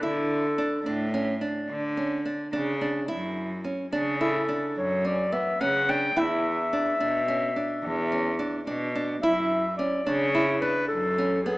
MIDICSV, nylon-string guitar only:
0, 0, Header, 1, 2, 480
1, 0, Start_track
1, 0, Tempo, 558659
1, 16, Time_signature, 11, 3, 24, 8
1, 9948, End_track
2, 0, Start_track
2, 0, Title_t, "Nylon-string guitar"
2, 0, Program_c, 0, 24
2, 23, Note_on_c, 0, 64, 70
2, 380, Note_off_c, 0, 64, 0
2, 499, Note_on_c, 0, 62, 62
2, 678, Note_off_c, 0, 62, 0
2, 739, Note_on_c, 0, 62, 66
2, 918, Note_off_c, 0, 62, 0
2, 978, Note_on_c, 0, 61, 66
2, 1158, Note_off_c, 0, 61, 0
2, 1212, Note_on_c, 0, 62, 61
2, 1573, Note_off_c, 0, 62, 0
2, 1694, Note_on_c, 0, 61, 54
2, 1875, Note_off_c, 0, 61, 0
2, 1937, Note_on_c, 0, 62, 61
2, 2117, Note_off_c, 0, 62, 0
2, 2173, Note_on_c, 0, 62, 73
2, 2354, Note_off_c, 0, 62, 0
2, 2417, Note_on_c, 0, 62, 64
2, 2596, Note_off_c, 0, 62, 0
2, 2648, Note_on_c, 0, 64, 73
2, 3010, Note_off_c, 0, 64, 0
2, 3131, Note_on_c, 0, 61, 60
2, 3313, Note_off_c, 0, 61, 0
2, 3372, Note_on_c, 0, 62, 70
2, 3553, Note_off_c, 0, 62, 0
2, 3615, Note_on_c, 0, 64, 66
2, 3795, Note_off_c, 0, 64, 0
2, 3854, Note_on_c, 0, 62, 54
2, 4213, Note_off_c, 0, 62, 0
2, 4335, Note_on_c, 0, 61, 57
2, 4515, Note_off_c, 0, 61, 0
2, 4574, Note_on_c, 0, 59, 62
2, 4754, Note_off_c, 0, 59, 0
2, 4818, Note_on_c, 0, 61, 70
2, 4997, Note_off_c, 0, 61, 0
2, 5060, Note_on_c, 0, 62, 59
2, 5237, Note_off_c, 0, 62, 0
2, 5297, Note_on_c, 0, 64, 71
2, 5655, Note_off_c, 0, 64, 0
2, 5781, Note_on_c, 0, 62, 59
2, 5958, Note_off_c, 0, 62, 0
2, 6018, Note_on_c, 0, 62, 65
2, 6196, Note_off_c, 0, 62, 0
2, 6256, Note_on_c, 0, 61, 61
2, 6435, Note_off_c, 0, 61, 0
2, 6498, Note_on_c, 0, 62, 59
2, 6855, Note_off_c, 0, 62, 0
2, 6975, Note_on_c, 0, 61, 57
2, 7154, Note_off_c, 0, 61, 0
2, 7209, Note_on_c, 0, 62, 66
2, 7390, Note_off_c, 0, 62, 0
2, 7449, Note_on_c, 0, 62, 67
2, 7630, Note_off_c, 0, 62, 0
2, 7693, Note_on_c, 0, 62, 66
2, 7873, Note_off_c, 0, 62, 0
2, 7933, Note_on_c, 0, 64, 76
2, 8292, Note_off_c, 0, 64, 0
2, 8410, Note_on_c, 0, 61, 57
2, 8590, Note_off_c, 0, 61, 0
2, 8648, Note_on_c, 0, 62, 70
2, 8829, Note_off_c, 0, 62, 0
2, 8889, Note_on_c, 0, 64, 67
2, 9070, Note_off_c, 0, 64, 0
2, 9124, Note_on_c, 0, 62, 58
2, 9486, Note_off_c, 0, 62, 0
2, 9609, Note_on_c, 0, 61, 59
2, 9790, Note_off_c, 0, 61, 0
2, 9845, Note_on_c, 0, 59, 68
2, 9948, Note_off_c, 0, 59, 0
2, 9948, End_track
0, 0, End_of_file